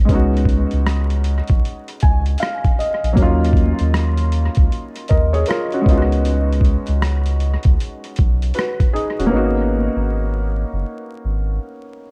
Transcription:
Already playing: sub bass G#1
0.05 felt piano G#3 B3, kick
0.09 sub bass C#2, felt piano C#4 D#4, closed hi-hat
0.15 felt piano F#4
0.37 closed hi-hat
0.45 kick, closed hi-hat
0.71 sub bass C#2, closed hi-hat
0.86 cross-stick, closed hi-hat
1.10 closed hi-hat
1.24 closed hi-hat
1.48 sub bass B1, kick, closed hi-hat
1.65 closed hi-hat
1.88 closed hi-hat
2.00 sub bass C#2, felt piano G#5, kick, closed hi-hat
2.26 closed hi-hat
2.38 felt piano F5, closed hi-hat
2.43 cross-stick
2.64 kick, closed hi-hat
2.79 felt piano D#5, closed hi-hat
3.03 sub bass A#1, closed hi-hat
3.13 felt piano F#3 A#3, kick
3.17 sub bass D#2, felt piano C#4 D#4, closed hi-hat
3.22 felt piano F4
3.44 closed hi-hat
3.53 kick, closed hi-hat
3.79 sub bass D#2, closed hi-hat
3.94 cross-stick, closed hi-hat
4.17 closed hi-hat
4.32 closed hi-hat
4.55 sub bass C#2, kick, closed hi-hat
4.72 closed hi-hat
4.96 closed hi-hat
5.08 sub bass D#2, felt piano A#4 D#5, kick, closed hi-hat
5.33 felt piano G#4 C#5, closed hi-hat
5.46 felt piano F4 A#4, closed hi-hat
5.51 cross-stick
5.72 felt piano C#4 F#4, closed hi-hat
5.81 felt piano G#3 B3
5.86 sub bass C#2, felt piano C#4 D#4, kick, closed hi-hat
5.91 felt piano F4
5.97 felt piano F#4
6.12 closed hi-hat
6.25 closed hi-hat
6.52 closed hi-hat
6.61 kick, closed hi-hat
6.87 sub bass C#2, closed hi-hat
7.02 cross-stick, closed hi-hat
7.26 closed hi-hat
7.40 closed hi-hat
7.63 sub bass C#2, kick, closed hi-hat
7.80 closed hi-hat
8.04 closed hi-hat
8.16 sub bass B1, kick, closed hi-hat
8.42 closed hi-hat
8.54 felt piano F#4 B4, closed hi-hat
8.59 cross-stick
8.80 kick, closed hi-hat
8.94 felt piano D#4 G#4, closed hi-hat
9.19 sub bass D#1, felt piano C#4 F#4, closed hi-hat
9.26 felt piano A#3 B3
9.31 sub bass G#1, felt piano C#4 D#4
9.36 felt piano F#4
9.96 sub bass G#1
10.73 sub bass F#1
11.25 sub bass G#1

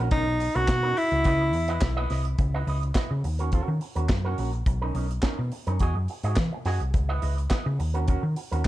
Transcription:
0.00 clean electric guitar C#4
0.11 picked electric bass B1, clean electric guitar C#4 D#4 A#4, tenor saxophone D#4, kick, closed hi-hat
0.27 muted clean electric guitar stroke
0.40 muted clean electric guitar stroke, open hi-hat
0.55 picked electric bass B1, clean electric guitar C#4 D#4 A#4, tenor saxophone F#4, closed hi-hat
0.68 picked electric bass B2, muted clean electric guitar stroke, kick, snare, clap, closed hi-hat
0.83 clean electric guitar C#4 D#4 A#4
0.97 tenor saxophone E4, muted clean electric guitar stroke, open hi-hat
1.12 picked electric bass C#2, muted clean electric guitar stroke, closed hi-hat
1.24 picked electric bass C#2, clean electric guitar E4 B4 D#5, kick, closed hi-hat
1.42 muted clean electric guitar stroke
1.53 picked electric bass E2, muted clean electric guitar stroke, open hi-hat
1.68 clean electric guitar E4 B4 D#5, closed hi-hat
1.81 picked electric bass B1, muted clean electric guitar stroke, kick, snare, clap, closed hi-hat
1.97 clean electric guitar E4 B4 D#5
2.10 picked electric bass C2, clean electric guitar E4 B4 D#5, snare, open hi-hat
2.25 muted clean electric guitar stroke, closed hi-hat
2.38 picked electric bass C#2, muted clean electric guitar stroke, kick, closed hi-hat
2.54 clean electric guitar E4 B4 D#5
2.67 picked electric bass C#2, clean electric guitar E4 B4 D#5, open hi-hat
2.83 muted clean electric guitar stroke, closed hi-hat
2.95 clean electric guitar E4 B4 D#5, kick, snare, clap, closed hi-hat
3.11 picked electric bass C#3, muted clean electric guitar stroke
3.24 picked electric bass D#2, muted clean electric guitar stroke, open hi-hat
3.39 clean electric guitar C#4 F#4 A#4, closed hi-hat
3.52 clean electric guitar C#4 F#4 A#4, kick, closed hi-hat
3.68 picked electric bass D#3, muted clean electric guitar stroke
3.81 muted clean electric guitar stroke, open hi-hat
3.95 picked electric bass D#2, clean electric guitar C#4 F#4 A#4, closed hi-hat
4.08 picked electric bass F#2, muted clean electric guitar stroke, kick, snare, clap, closed hi-hat
4.25 clean electric guitar C#4 F#4 A#4
4.38 picked electric bass A#1, clean electric guitar C#4 F#4 A#4, open hi-hat
4.53 closed hi-hat
4.66 picked electric bass B1, muted clean electric guitar stroke, kick, closed hi-hat
4.82 clean electric guitar C#4 D#4 A#4
4.95 picked electric bass B1, clean electric guitar C#4 D#4 A#4, open hi-hat
5.10 muted clean electric guitar stroke, closed hi-hat
5.23 clean electric guitar C#4 D#4 A#4, kick, snare, clap, closed hi-hat
5.38 picked electric bass B2, muted clean electric guitar stroke
5.52 muted clean electric guitar stroke, open hi-hat
5.67 picked electric bass F#2, clean electric guitar C#4 D#4 A#4, closed hi-hat
5.79 picked electric bass E2, clean electric guitar F#4 G#4 D#5, kick, closed hi-hat
5.95 picked electric bass F#2, muted clean electric guitar stroke
6.08 muted clean electric guitar stroke, open hi-hat
6.23 picked electric bass G#2, clean electric guitar F#4 G#4 D#5, closed hi-hat
6.36 picked electric bass E3, kick, snare, clap, closed hi-hat
6.53 muted clean electric guitar stroke
6.65 picked electric bass F#2, clean electric guitar F#4 G#4 D#5, snare, open hi-hat
6.80 picked electric bass C2, muted clean electric guitar stroke, closed hi-hat
6.94 picked electric bass C#2, muted clean electric guitar stroke, kick, closed hi-hat
7.09 clean electric guitar E4 B4 D#5
7.22 picked electric bass C#2, clean electric guitar E4 B4 D#5, open hi-hat
7.38 muted clean electric guitar stroke, closed hi-hat
7.50 clean electric guitar E4 B4 D#5, kick, snare, clap, closed hi-hat
7.65 picked electric bass C#3, muted clean electric guitar stroke
7.79 picked electric bass D#2, muted clean electric guitar stroke, open hi-hat
7.94 clean electric guitar C#4 F#4 A#4, closed hi-hat
8.08 clean electric guitar C#4 F#4 A#4, kick, closed hi-hat
8.23 picked electric bass D#3, muted clean electric guitar stroke
8.36 muted clean electric guitar stroke, open hi-hat
8.52 picked electric bass D#2, clean electric guitar C#4 F#4 A#4, closed hi-hat
8.64 closed hi-hat

